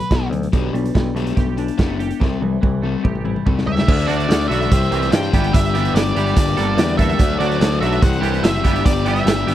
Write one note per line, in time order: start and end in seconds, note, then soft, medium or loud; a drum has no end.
0.00 0.27 B4 medium
0.00 closed hi-hat medium
0.11 0.27 B1 medium
0.11 0.31 B2 medium
0.11 0.31 F#3 medium
0.11 0.31 B3 loud
0.11 kick medium
0.11 snare loud
0.11 closed hi-hat medium
0.30 0.47 D2 medium
0.30 0.51 B2 medium
0.30 0.51 F#3 medium
0.30 closed hi-hat medium
0.43 closed hi-hat medium
0.53 0.69 B1 medium
0.53 1.58 B2 medium
0.53 0.72 B3 medium
0.53 0.72 D4 medium
0.53 0.73 G4 loud
0.53 kick loud
0.53 closed hi-hat medium
0.73 0.89 B1 medium
0.73 0.93 G3 medium
0.73 0.93 B3 medium
0.73 0.93 D4 medium
0.73 closed hi-hat soft
0.85 closed hi-hat medium
0.94 1.11 B1 medium
0.94 1.99 G3 medium
0.94 1.14 B3 medium
0.94 1.14 D4 medium
0.94 kick loud
0.94 snare loud
0.94 closed hi-hat soft
1.15 1.31 B1 medium
1.15 1.78 A3 medium
1.15 1.35 B3 medium
1.15 1.35 D4 medium
1.15 1.36 G4 medium
1.15 closed hi-hat medium
1.27 closed hi-hat medium
1.36 1.69 B1 medium
1.36 1.55 B3 medium
1.36 1.55 D4 medium
1.36 1.98 G4 medium
1.36 kick loud
1.36 snare soft
1.36 closed hi-hat medium
1.57 1.76 B3 medium
1.57 1.76 D4 medium
1.57 closed hi-hat medium
1.68 closed hi-hat medium
1.78 2.11 F#1 medium
1.78 2.82 A3 medium
1.78 1.98 B3 medium
1.78 1.98 D4 medium
1.78 1.98 G4 medium
1.78 kick loud
1.78 snare loud
1.78 closed hi-hat medium
1.99 2.18 B3 medium
1.99 2.18 D4 medium
1.99 2.20 G4 medium
1.99 closed hi-hat medium
2.10 closed hi-hat medium
2.20 2.37 C2 medium
2.20 2.40 C3 medium
2.20 2.40 G3 medium
2.20 2.40 C4 medium
2.20 kick loud
2.20 snare medium
2.41 2.57 C2 medium
2.41 2.60 C3 medium
2.41 2.60 E3 medium
2.41 2.61 G3 medium
2.41 high tom medium
2.61 2.95 C2 medium
2.61 2.81 C3 medium
2.61 3.66 E3 medium
2.61 2.81 G3 medium
2.61 kick medium
2.61 mid tom medium
2.82 3.02 C3 medium
2.82 3.03 G3 medium
2.82 3.44 A3 medium
2.82 3.03 C4 medium
2.82 mid tom medium
3.03 3.36 A1 medium
3.03 3.22 C3 medium
3.03 3.23 G3 medium
3.03 3.66 G4 medium
3.03 kick loud
3.15 mid tom medium
3.25 3.44 C3 medium
3.25 3.44 G3 medium
3.25 3.87 E4 medium
3.25 mid tom medium
3.36 mid tom medium
3.46 3.62 C2 medium
3.46 3.65 C3 medium
3.46 3.65 G3 medium
3.46 3.87 A3 medium
3.46 3.66 C4 medium
3.46 kick loud
3.46 floor tom medium
3.58 snare medium
3.66 3.82 C#2 medium
3.66 3.85 C3 medium
3.66 3.85 G3 medium
3.66 3.88 G4 medium
3.66 4.07 E5 medium
3.66 floor tom medium
3.79 snare medium
3.87 4.05 D2 loud
3.87 4.28 D3 loud
3.87 4.10 A3 loud
3.87 4.09 D4 loud
3.87 4.07 F#4 loud
3.87 4.71 A4 medium
3.87 4.70 D5 medium
3.87 4.70 F#5 medium
3.87 4.70 D6 medium
3.87 kick loud
3.87 crash loud
3.99 closed hi-hat soft
4.08 4.26 D2 medium
4.08 4.35 D3 medium
4.08 4.29 A3 medium
4.08 4.30 D4 medium
4.08 4.31 F#4 medium
4.08 4.47 D5 medium
4.08 closed hi-hat medium
4.20 closed hi-hat soft
4.29 4.46 D2 medium
4.29 4.69 D3 medium
4.29 4.51 A3 medium
4.29 4.50 D4 medium
4.29 4.48 F#4 medium
4.29 snare loud
4.29 closed hi-hat loud
4.48 4.67 B1 medium
4.48 4.71 D3 medium
4.48 4.70 D4 medium
4.48 4.69 F#4 medium
4.48 5.13 E5 loud
4.48 closed hi-hat medium
4.53 4.71 A3 medium
4.62 closed hi-hat soft
4.71 4.89 C2 loud
4.71 5.12 C3 loud
4.71 5.12 E3 medium
4.71 4.94 G3 loud
4.71 4.92 C4 loud
4.71 6.35 G4 medium
4.71 4.91 G4 loud
4.71 5.33 C5 medium
4.71 5.32 E5 medium
4.71 5.33 C6 medium
4.71 kick loud
4.71 closed hi-hat loud
4.91 5.09 C2 medium
4.91 5.19 E3 medium
4.91 5.14 C4 medium
4.91 5.14 G4 medium
4.91 closed hi-hat medium
4.96 5.13 G3 medium
5.02 snare soft
5.02 closed hi-hat medium
5.11 5.29 G2 medium
5.11 5.32 C3 loud
5.11 5.33 E3 loud
5.11 5.33 G3 loud
5.11 5.33 C4 loud
5.11 5.55 G5 loud
5.11 snare loud
5.11 closed hi-hat loud
5.15 5.32 G4 loud
5.23 closed hi-hat medium
5.33 5.50 G1 loud
5.33 5.52 G2 medium
5.33 5.53 D3 medium
5.33 5.61 E3 medium
5.33 5.54 G3 medium
5.33 5.54 B3 medium
5.33 5.54 D4 medium
5.33 5.55 G4 loud
5.33 8.00 D5 medium
5.33 6.36 E5 medium
5.33 6.36 B5 medium
5.33 kick medium
5.33 closed hi-hat medium
5.44 closed hi-hat medium
5.53 5.88 G1 loud
5.53 5.95 G2 loud
5.53 5.96 D3 loud
5.53 5.77 G3 loud
5.53 5.76 B3 loud
5.53 5.75 D4 loud
5.53 5.74 G4 loud
5.53 5.95 E5 loud
5.53 kick loud
5.53 closed hi-hat loud
5.65 closed hi-hat medium
5.75 6.02 E3 medium
5.75 5.94 G3 medium
5.75 5.95 B3 medium
5.75 5.96 D4 medium
5.75 5.97 G4 medium
5.75 closed hi-hat medium
5.85 closed hi-hat medium
5.94 6.12 G1 medium
5.94 6.17 G3 medium
5.94 6.17 B3 medium
5.94 6.16 D4 medium
5.94 6.15 G4 medium
5.94 6.97 D5 medium
5.94 snare loud
5.94 closed hi-hat loud
6.15 6.33 G1 medium
6.15 6.37 E3 medium
6.15 6.37 G3 medium
6.15 6.37 B3 medium
6.15 6.36 D4 medium
6.15 6.36 G4 medium
6.15 closed hi-hat medium
6.27 closed hi-hat soft
6.36 6.54 G1 loud
6.36 6.76 G2 medium
6.36 6.77 D3 loud
6.36 6.59 G3 loud
6.36 6.59 A#3 loud
6.36 6.58 D4 loud
6.36 7.19 G4 medium
6.36 6.57 G4 loud
6.36 7.19 A#4 medium
6.36 8.01 A5 medium
6.36 kick loud
6.36 closed hi-hat loud
6.57 6.75 G1 loud
6.57 6.78 G3 medium
6.57 6.78 A#3 medium
6.57 6.78 D4 medium
6.57 6.79 G4 medium
6.57 6.84 A4 loud
6.57 closed hi-hat medium
6.77 7.12 E2 medium
6.77 7.18 G2 loud
6.77 7.17 D3 medium
6.77 7.19 G3 loud
6.77 7.19 A#3 medium
6.77 7.19 D4 loud
6.77 7.19 G4 loud
6.77 snare loud
6.77 closed hi-hat loud
6.88 closed hi-hat soft
6.97 7.20 G3 medium
6.97 7.20 A#3 medium
6.97 7.20 D4 medium
6.97 7.19 A4 medium
6.97 7.38 E5 loud
6.97 kick medium
6.97 closed hi-hat medium
7.09 closed hi-hat medium
7.18 7.37 D2 loud
7.18 7.61 D3 loud
7.18 7.60 F#3 medium
7.18 7.42 A3 loud
7.18 7.40 D4 loud
7.18 8.01 F#4 medium
7.18 7.38 F#4 loud
7.18 8.02 A4 medium
7.18 kick loud
7.18 closed hi-hat loud
7.30 closed hi-hat soft
7.39 7.57 D2 medium
7.39 7.68 F#3 medium
7.39 7.61 A3 medium
7.39 7.62 D4 medium
7.39 7.63 F#4 medium
7.39 7.80 D5 medium
7.39 closed hi-hat medium
7.51 closed hi-hat soft
7.60 7.78 D2 medium
7.60 8.02 F#3 medium
7.60 7.83 A3 medium
7.60 7.83 D4 medium
7.60 snare loud
7.60 closed hi-hat medium
7.64 7.81 F#4 medium
7.72 closed hi-hat soft
7.81 7.99 B1 loud
7.81 8.03 F#3 medium
7.81 8.02 D4 medium
7.81 8.02 F#4 medium
7.81 8.03 E5 medium
7.81 closed hi-hat medium
7.85 8.03 A3 medium
7.92 closed hi-hat soft
8.02 8.20 C2 medium
8.02 8.43 C3 loud
8.02 8.44 E3 loud
8.02 8.24 G3 loud
8.02 8.23 E4 loud
8.02 9.54 G4 medium
8.02 8.21 G4 loud
8.02 8.65 C5 medium
8.02 9.54 E5 medium
8.02 8.45 F#5 loud
8.02 8.65 C6 medium
8.02 kick loud
8.02 closed hi-hat loud
8.13 closed hi-hat soft
8.22 8.40 C2 medium
8.22 8.50 E3 medium
8.22 8.45 G3 medium
8.22 8.45 E4 medium
8.22 8.46 G4 medium
8.22 closed hi-hat medium
8.34 closed hi-hat soft
8.43 8.61 F#1 loud
8.43 8.64 C3 medium
8.43 8.64 E3 loud
8.43 8.65 G3 loud
8.43 8.65 E4 loud
8.43 8.85 E5 medium
8.43 snare loud
8.43 closed hi-hat loud
8.47 8.63 G4 loud
8.64 8.82 G1 loud
8.64 8.84 G2 medium
8.64 8.84 D3 medium
8.64 8.92 E3 medium
8.64 8.85 G3 medium
8.64 8.86 B3 loud
8.64 8.86 D4 loud
8.64 8.87 G4 loud
8.64 9.54 D5 medium
8.64 9.54 B5 medium
8.64 kick medium
8.64 closed hi-hat medium
8.75 closed hi-hat medium
8.85 9.20 G1 loud
8.85 9.27 G2 loud
8.85 9.27 D3 loud
8.85 9.07 G3 loud
8.85 9.06 B3 loud
8.85 9.05 D4 loud
8.85 9.04 G4 loud
8.85 9.07 D5 loud
8.85 kick loud
8.85 closed hi-hat loud
8.96 closed hi-hat medium
9.05 9.33 E3 medium
9.05 9.25 G3 medium
9.05 9.25 B3 medium
9.05 9.27 D4 medium
9.05 9.27 G4 medium
9.05 9.54 E5 medium
9.05 closed hi-hat medium
9.16 closed hi-hat medium
9.26 9.44 G1 medium
9.26 9.50 G3 medium
9.26 9.49 B3 medium
9.26 9.47 D4 medium
9.26 9.47 G4 medium
9.26 snare loud
9.26 closed hi-hat loud
9.47 9.54 G1 medium
9.47 9.54 E3 medium
9.47 9.54 G3 medium
9.47 9.54 B3 medium
9.47 9.54 D4 medium
9.47 9.54 G4 medium
9.47 closed hi-hat medium